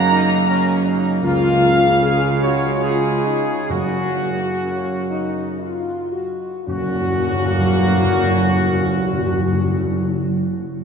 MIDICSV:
0, 0, Header, 1, 6, 480
1, 0, Start_track
1, 0, Key_signature, 6, "major"
1, 0, Tempo, 748130
1, 795, Tempo, 797872
1, 796, Time_signature, 3, 2, 24, 8
1, 1755, Tempo, 864553
1, 2235, Tempo, 923077
1, 2715, Tempo, 980392
1, 3195, Tempo, 1081081
1, 5520, End_track
2, 0, Start_track
2, 0, Title_t, "Trumpet section"
2, 0, Program_c, 0, 61
2, 0, Note_on_c, 0, 82, 127
2, 525, Note_off_c, 0, 82, 0
2, 794, Note_on_c, 0, 77, 127
2, 1483, Note_off_c, 0, 77, 0
2, 1513, Note_on_c, 0, 73, 100
2, 1742, Note_off_c, 0, 73, 0
2, 1757, Note_on_c, 0, 68, 103
2, 2214, Note_off_c, 0, 68, 0
2, 2234, Note_on_c, 0, 66, 105
2, 3175, Note_off_c, 0, 66, 0
2, 3674, Note_on_c, 0, 66, 127
2, 5093, Note_off_c, 0, 66, 0
2, 5520, End_track
3, 0, Start_track
3, 0, Title_t, "French horn section"
3, 0, Program_c, 1, 60
3, 0, Note_on_c, 1, 61, 102
3, 73, Note_on_c, 1, 63, 118
3, 79, Note_off_c, 1, 61, 0
3, 295, Note_off_c, 1, 63, 0
3, 316, Note_on_c, 1, 61, 111
3, 537, Note_off_c, 1, 61, 0
3, 554, Note_on_c, 1, 63, 114
3, 794, Note_on_c, 1, 65, 118
3, 797, Note_off_c, 1, 63, 0
3, 1167, Note_off_c, 1, 65, 0
3, 1269, Note_on_c, 1, 68, 106
3, 1493, Note_off_c, 1, 68, 0
3, 1503, Note_on_c, 1, 66, 102
3, 1736, Note_off_c, 1, 66, 0
3, 1758, Note_on_c, 1, 65, 85
3, 1976, Note_off_c, 1, 65, 0
3, 1985, Note_on_c, 1, 63, 85
3, 2215, Note_off_c, 1, 63, 0
3, 2228, Note_on_c, 1, 61, 81
3, 2642, Note_off_c, 1, 61, 0
3, 2710, Note_on_c, 1, 61, 86
3, 2932, Note_off_c, 1, 61, 0
3, 2947, Note_on_c, 1, 63, 89
3, 3176, Note_off_c, 1, 63, 0
3, 3193, Note_on_c, 1, 65, 92
3, 3424, Note_on_c, 1, 66, 85
3, 3429, Note_off_c, 1, 65, 0
3, 3652, Note_off_c, 1, 66, 0
3, 3668, Note_on_c, 1, 66, 104
3, 3669, Note_on_c, 1, 61, 111
3, 5087, Note_off_c, 1, 66, 0
3, 5088, Note_off_c, 1, 61, 0
3, 5520, End_track
4, 0, Start_track
4, 0, Title_t, "Trombone section"
4, 0, Program_c, 2, 61
4, 0, Note_on_c, 2, 49, 125
4, 0, Note_on_c, 2, 58, 125
4, 770, Note_off_c, 2, 49, 0
4, 792, Note_on_c, 2, 49, 121
4, 1241, Note_off_c, 2, 58, 0
4, 1269, Note_on_c, 2, 56, 104
4, 2140, Note_off_c, 2, 56, 0
4, 2235, Note_on_c, 2, 58, 77
4, 3447, Note_off_c, 2, 49, 0
4, 3448, Note_off_c, 2, 58, 0
4, 3671, Note_on_c, 2, 49, 99
4, 3672, Note_on_c, 2, 58, 115
4, 5090, Note_off_c, 2, 49, 0
4, 5090, Note_off_c, 2, 58, 0
4, 5520, End_track
5, 0, Start_track
5, 0, Title_t, "Timpani"
5, 0, Program_c, 3, 47
5, 790, Note_on_c, 3, 49, 120
5, 1481, Note_off_c, 3, 49, 0
5, 2235, Note_on_c, 3, 42, 116
5, 2931, Note_off_c, 3, 42, 0
5, 3673, Note_on_c, 3, 42, 92
5, 3701, Note_off_c, 3, 42, 0
5, 3703, Note_on_c, 3, 42, 91
5, 3732, Note_off_c, 3, 42, 0
5, 3733, Note_on_c, 3, 42, 93
5, 3761, Note_off_c, 3, 42, 0
5, 3763, Note_on_c, 3, 42, 82
5, 3789, Note_off_c, 3, 42, 0
5, 3789, Note_on_c, 3, 42, 101
5, 3817, Note_off_c, 3, 42, 0
5, 3817, Note_on_c, 3, 42, 89
5, 3846, Note_off_c, 3, 42, 0
5, 3846, Note_on_c, 3, 42, 90
5, 3875, Note_off_c, 3, 42, 0
5, 3875, Note_on_c, 3, 42, 84
5, 3901, Note_off_c, 3, 42, 0
5, 3901, Note_on_c, 3, 42, 92
5, 3930, Note_off_c, 3, 42, 0
5, 3932, Note_on_c, 3, 42, 84
5, 3960, Note_off_c, 3, 42, 0
5, 3960, Note_on_c, 3, 42, 90
5, 3988, Note_off_c, 3, 42, 0
5, 3988, Note_on_c, 3, 42, 88
5, 4016, Note_off_c, 3, 42, 0
5, 4016, Note_on_c, 3, 42, 89
5, 4044, Note_off_c, 3, 42, 0
5, 4044, Note_on_c, 3, 42, 79
5, 4073, Note_off_c, 3, 42, 0
5, 4073, Note_on_c, 3, 42, 101
5, 4102, Note_off_c, 3, 42, 0
5, 4103, Note_on_c, 3, 42, 93
5, 4131, Note_off_c, 3, 42, 0
5, 4132, Note_on_c, 3, 42, 93
5, 4159, Note_off_c, 3, 42, 0
5, 4159, Note_on_c, 3, 42, 90
5, 4188, Note_off_c, 3, 42, 0
5, 4188, Note_on_c, 3, 42, 103
5, 4217, Note_off_c, 3, 42, 0
5, 4218, Note_on_c, 3, 42, 89
5, 4247, Note_off_c, 3, 42, 0
5, 4249, Note_on_c, 3, 42, 101
5, 4276, Note_off_c, 3, 42, 0
5, 4276, Note_on_c, 3, 42, 93
5, 4305, Note_off_c, 3, 42, 0
5, 4306, Note_on_c, 3, 42, 94
5, 4334, Note_off_c, 3, 42, 0
5, 4334, Note_on_c, 3, 42, 93
5, 4361, Note_off_c, 3, 42, 0
5, 4361, Note_on_c, 3, 42, 98
5, 4389, Note_off_c, 3, 42, 0
5, 4389, Note_on_c, 3, 42, 84
5, 4417, Note_off_c, 3, 42, 0
5, 4417, Note_on_c, 3, 42, 94
5, 4445, Note_off_c, 3, 42, 0
5, 4445, Note_on_c, 3, 42, 90
5, 4474, Note_off_c, 3, 42, 0
5, 4475, Note_on_c, 3, 42, 94
5, 4503, Note_off_c, 3, 42, 0
5, 4504, Note_on_c, 3, 42, 94
5, 4533, Note_off_c, 3, 42, 0
5, 4534, Note_on_c, 3, 42, 93
5, 4561, Note_off_c, 3, 42, 0
5, 4561, Note_on_c, 3, 42, 92
5, 4589, Note_off_c, 3, 42, 0
5, 4589, Note_on_c, 3, 42, 89
5, 4614, Note_off_c, 3, 42, 0
5, 4614, Note_on_c, 3, 42, 85
5, 4642, Note_off_c, 3, 42, 0
5, 4642, Note_on_c, 3, 42, 91
5, 4671, Note_off_c, 3, 42, 0
5, 4671, Note_on_c, 3, 42, 84
5, 4700, Note_off_c, 3, 42, 0
5, 4700, Note_on_c, 3, 42, 95
5, 4729, Note_off_c, 3, 42, 0
5, 4729, Note_on_c, 3, 42, 90
5, 4758, Note_off_c, 3, 42, 0
5, 4761, Note_on_c, 3, 42, 94
5, 4787, Note_off_c, 3, 42, 0
5, 4787, Note_on_c, 3, 42, 84
5, 4816, Note_off_c, 3, 42, 0
5, 4817, Note_on_c, 3, 42, 106
5, 4845, Note_off_c, 3, 42, 0
5, 4846, Note_on_c, 3, 42, 87
5, 4874, Note_off_c, 3, 42, 0
5, 4874, Note_on_c, 3, 42, 89
5, 4903, Note_off_c, 3, 42, 0
5, 4905, Note_on_c, 3, 42, 88
5, 4934, Note_off_c, 3, 42, 0
5, 4934, Note_on_c, 3, 42, 92
5, 4962, Note_off_c, 3, 42, 0
5, 4962, Note_on_c, 3, 42, 87
5, 4991, Note_off_c, 3, 42, 0
5, 4991, Note_on_c, 3, 42, 96
5, 5019, Note_off_c, 3, 42, 0
5, 5019, Note_on_c, 3, 42, 90
5, 5048, Note_off_c, 3, 42, 0
5, 5050, Note_on_c, 3, 42, 92
5, 5077, Note_off_c, 3, 42, 0
5, 5077, Note_on_c, 3, 42, 94
5, 5106, Note_off_c, 3, 42, 0
5, 5520, End_track
6, 0, Start_track
6, 0, Title_t, "Tuba"
6, 0, Program_c, 4, 58
6, 0, Note_on_c, 4, 42, 114
6, 769, Note_off_c, 4, 42, 0
6, 795, Note_on_c, 4, 37, 105
6, 2030, Note_off_c, 4, 37, 0
6, 2236, Note_on_c, 4, 42, 80
6, 3448, Note_off_c, 4, 42, 0
6, 3671, Note_on_c, 4, 42, 99
6, 5090, Note_off_c, 4, 42, 0
6, 5520, End_track
0, 0, End_of_file